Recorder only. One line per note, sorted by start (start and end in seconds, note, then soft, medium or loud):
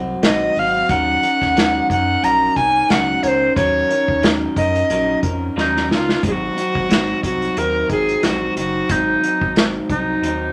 0.26 0.61 D#5 medium
0.59 0.92 F5 medium
0.90 1.90 F#5 loud
1.92 2.26 F#5 loud
2.24 2.58 A#5 loud
2.56 2.92 G#5 loud
2.91 3.25 F#5 medium
3.23 3.29 C#5 medium
3.28 3.55 C5 medium
3.56 4.26 C#5 medium
4.57 5.20 D#5 medium
5.59 5.89 D#4 medium
5.93 6.22 F4 medium
6.27 6.33 G#4 medium
6.32 7.21 F#4 medium
7.25 7.60 F#4 medium
7.58 7.91 A#4 medium
7.91 8.26 G#4 medium
8.24 8.57 F#4 medium
8.58 8.93 F#4 medium
8.91 9.64 D#4 medium
9.90 10.52 D#4 medium